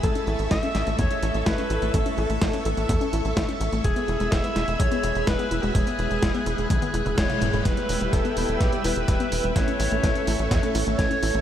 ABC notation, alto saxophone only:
X:1
M:4/4
L:1/16
Q:1/4=126
K:Emix
V:1 name="Alto saxophone"
A4 e4 c4 B4 | A2 A4 A8 z2 | G4 e4 c4 B3 F | G8 G4 c4 |
[K:Edor] B4 A4 G2 B6 | c8 z4 c4 |]